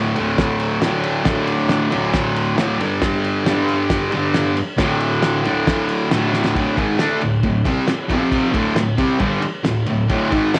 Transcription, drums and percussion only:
0.16 ride
0.38 kick, snare, ride
0.60 ride
0.82 snare, ride
1.04 ride
1.25 kick, snare, ride
1.47 ride
1.69 snare, ride
1.92 ride
2.14 kick, snare, ride
2.36 ride
2.58 snare, ride
2.81 ride
3.02 kick, snare, ride
3.24 ride
3.46 snare, ride
3.69 ride
3.90 kick, snare, ride
4.12 ride
4.34 snare, ride
4.57 ride
4.78 kick, snare, ride
5.00 ride
5.23 snare, ride
5.45 ride
5.67 kick, snare, ride
5.89 ride
6.11 snare, ride
6.33 snare
6.45 snare
6.55 kick, ride
6.77 kick, ride
6.99 snare, ride
7.21 ride
7.43 kick, ride
7.65 kick, ride
7.88 snare, ride
8.10 kick, ride
8.32 kick, ride
8.54 kick, ride
8.76 snare, ride
8.98 kick, ride
9.20 kick, ride
9.42 ride
9.65 snare, ride
9.86 ride
10.10 kick, ride
10.32 kick, ride
10.54 snare, ride

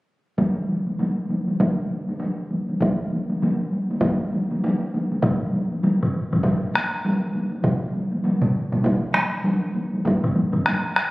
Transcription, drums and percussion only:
0.38 taiko, taiko high
0.69 taiko high
0.87 taiko high
0.99 taiko high
1.29 taiko high
1.48 taiko high
1.60 taiko, taiko high
1.90 taiko high
2.08 taiko high
2.20 taiko high
2.51 taiko high
2.69 taiko high
2.80 taiko, taiko high
3.11 taiko high
3.29 taiko high
3.42 taiko high
3.73 taiko high
3.90 taiko high
4.01 taiko, taiko high
4.33 taiko high
4.51 taiko high
4.64 taiko high
4.94 taiko high
5.12 taiko high
5.22 taiko, taiko low-mid, taiko high
5.53 taiko high
5.72 taiko high
5.83 taiko high
6.03 taiko low-mid
6.32 taiko low-mid, taiko high
6.43 taiko, taiko low-mid, taiko high
6.74 taiko rim, taiko high
7.05 taiko high
7.35 taiko high
7.52 taiko high
7.63 taiko, taiko mid, taiko high
7.93 taiko high
8.12 taiko high
8.24 taiko high
8.42 taiko mid
8.72 taiko mid, taiko high
8.84 taiko, taiko mid, taiko high
9.14 taiko rim, taiko high
9.44 taiko high
9.74 taiko high
9.93 taiko high
10.05 taiko, taiko high
10.24 taiko low-mid
10.36 taiko high
10.53 taiko low-mid, taiko high
10.66 taiko rim, taiko high
10.96 taiko rim

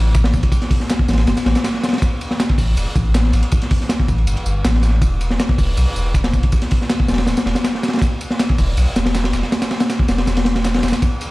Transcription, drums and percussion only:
0.15 kick, snare, ride, tambourine
0.24 snare, ride
0.33 kick, tambourine
0.43 kick, closed hi-hat, ride
0.52 kick, ride, tambourine
0.62 snare, closed hi-hat
0.71 kick, open hi-hat, ride
0.80 snare
0.90 snare, ride, tambourine
0.99 kick
1.08 snare, ride, tambourine
1.13 snare, ride
1.18 snare, ride
1.27 snare, ride, tambourine
1.37 snare, ride, tambourine
1.46 snare, ride
1.55 snare, ride, tambourine
1.64 snare, ride, tambourine
1.74 snare
1.83 snare, ride, tambourine
1.88 snare, ride
1.93 snare, ride
1.98 snare, ride
2.02 kick, ride, tambourine
2.21 ride, tambourine
2.31 snare
2.40 snare, ride, tambourine
2.49 kick, snare
2.58 kick, open hi-hat, tambourine
2.77 ride, tambourine
2.96 kick, ride, tambourine
3.14 snare, ride, tambourine
3.24 snare
3.33 ride, tambourine
3.43 closed hi-hat
3.52 kick, ride, tambourine
3.62 snare, closed hi-hat
3.71 kick, open hi-hat, ride
3.81 snare
3.89 snare, ride, tambourine
4.00 kick
4.08 kick, ride, tambourine
4.18 ride
4.27 ride, tambourine
4.37 closed hi-hat
4.46 tambourine
4.65 snare, ride, tambourine
4.75 snare
4.83 snare, ride, tambourine
5.02 kick, ride, tambourine
5.21 ride, tambourine
5.30 snare
5.40 snare, ride, tambourine
5.49 kick, snare
5.58 kick, open hi-hat, tambourine
5.77 ride, tambourine
5.96 tambourine
6.14 kick, snare, ride, tambourine
6.24 snare, ride
6.33 kick, tambourine
6.43 kick, closed hi-hat, ride
6.52 kick, ride, tambourine
6.62 snare, closed hi-hat
6.71 kick, open hi-hat, ride
6.82 snare
6.90 snare, ride, tambourine
7.00 kick
7.08 snare, ride, tambourine
7.13 snare, ride
7.18 snare, ride
7.27 snare, ride, tambourine
7.37 snare, ride, tambourine
7.46 snare, ride
7.55 snare, ride, tambourine
7.64 snare, ride, tambourine
7.75 snare
7.83 snare, ride, tambourine
7.88 snare, ride
7.93 snare, ride
7.97 snare, ride
8.02 kick, ride, tambourine
8.21 ride, tambourine
8.30 snare
8.39 snare, ride, tambourine
8.49 kick, snare
8.58 kick, open hi-hat, tambourine
8.77 ride, tambourine
8.96 snare, ride, tambourine
9.06 snare, ride
9.14 snare, ride, tambourine
9.24 snare, ride
9.33 snare, ride, tambourine
9.43 snare
9.52 snare, ride, tambourine
9.62 snare, ride, tambourine
9.71 snare, ride
9.80 snare, ride, tambourine
9.90 snare, ride, tambourine
9.99 kick
10.08 snare, ride, tambourine
10.18 snare, ride
10.27 snare, ride, tambourine
10.37 snare, closed hi-hat, ride
10.45 snare, ride, tambourine
10.56 snare, ride
10.65 snare, ride, tambourine
10.74 snare, ride
10.78 snare, ride
10.83 snare, ride, tambourine
10.88 snare, tambourine
10.92 snare, ride, tambourine
11.02 kick, ride, tambourine
11.21 ride, tambourine

